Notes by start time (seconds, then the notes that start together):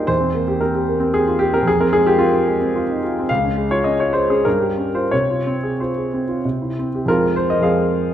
Already playing: G2 A#3 D#4 F4 G4 G#4 A#4 C5 D5
0.07 E2 C5
0.20 C4
0.34 A#3
0.48 G4
0.61 C4 A#4
0.75 G4
0.89 A#3
1.00 C4
1.14 G4 G#4
1.28 F4
1.39 G4
1.53 C4 A#4
1.63 F2
1.67 G#4
1.80 C4 A#4
1.93 G#3 G#4
2.07 F4 G4
2.19 C4 F4
2.33 F4
2.48 G#3
2.61 C4
2.75 F4
2.89 D#4
3.04 F4
3.19 C4
3.29 C#2 F5
3.45 C#4
3.58 G#3
3.71 F4 C#5
3.84 C#4 D#5
4.00 F4 C#5
4.13 G#3 C5
4.30 C#4 G#4
4.45 G2 A#4
4.60 G4
4.78 C#4
4.95 F4 C5
5.12 C3 C#5
5.30 F4
5.47 C4
5.63 G#4
5.80 F4 C5
5.97 G#4
6.14 C4
6.28 F4
6.45 C3
6.62 E4
6.79 C4
6.95 G4
7.06 F2 F3 G#3 C4 F4 A#4
7.36 C5
7.50 D#5
7.60 F2 F3 G#3 C4 G#4 C5 F5